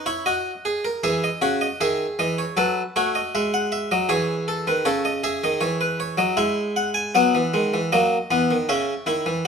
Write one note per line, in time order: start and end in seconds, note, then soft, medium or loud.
0.06 0.25 E4 medium
0.06 0.25 C#5 medium
0.26 0.50 F#4 medium
0.26 1.01 D#5 medium
0.65 0.84 G#4 medium
0.85 1.03 A#4 medium
1.04 1.27 E3 medium
1.04 1.27 G#4 medium
1.04 1.22 E5 medium
1.24 1.42 D#5 medium
1.42 1.65 C#3 medium
1.42 1.66 F#4 medium
1.42 1.61 C#5 medium
1.61 1.80 D#5 medium
1.81 2.04 D#3 medium
1.81 2.55 G#4 medium
1.81 2.05 E5 medium
2.19 2.43 E3 medium
2.19 2.38 D#5 medium
2.38 2.57 C#5 medium
2.57 2.80 F#3 medium
2.57 2.81 A4 medium
2.57 2.81 B4 medium
2.96 3.19 A3 medium
2.96 4.06 F#4 medium
2.96 3.14 C#5 medium
3.15 3.33 D#5 medium
3.35 3.89 G#3 medium
3.35 3.52 E5 medium
3.54 3.71 F#5 medium
3.72 3.90 E5 medium
3.91 4.09 F#3 medium
3.91 4.09 D#5 medium
4.09 4.64 E3 medium
4.09 4.83 G#4 medium
4.09 4.33 C#5 medium
4.48 4.66 A4 medium
4.67 4.85 D#3 medium
4.67 4.85 B4 medium
4.85 5.41 C#3 medium
4.85 5.09 A4 medium
4.85 5.04 C#5 medium
5.05 5.23 D#5 medium
5.24 6.34 G#4 medium
5.24 5.42 E5 medium
5.44 5.61 D#3 medium
5.44 5.62 D#5 medium
5.61 6.17 E3 medium
5.61 5.79 C#5 medium
5.81 5.99 B4 medium
6.00 6.18 C#5 medium
6.18 6.37 F#3 medium
6.18 6.37 D#5 medium
6.37 7.12 G#3 medium
6.37 7.12 E4 medium
6.37 6.61 E5 medium
6.76 6.95 F#5 medium
6.94 7.13 G#5 medium
7.15 7.33 F#3 medium
7.15 7.38 B3 medium
7.15 7.89 F#5 medium
7.35 7.53 E3 medium
7.54 7.72 D#3 medium
7.54 7.77 G#3 medium
7.74 7.91 E3 medium
7.92 8.16 F#3 medium
7.92 8.16 A#3 medium
7.92 8.65 D#5 medium
8.31 8.48 E3 medium
8.31 8.54 B3 medium
8.51 8.68 D#3 medium
8.69 8.92 C#3 medium
8.69 8.92 C#4 medium
8.69 9.42 E5 medium
9.06 9.24 D#3 medium
9.06 9.30 E4 medium
9.26 9.44 E3 medium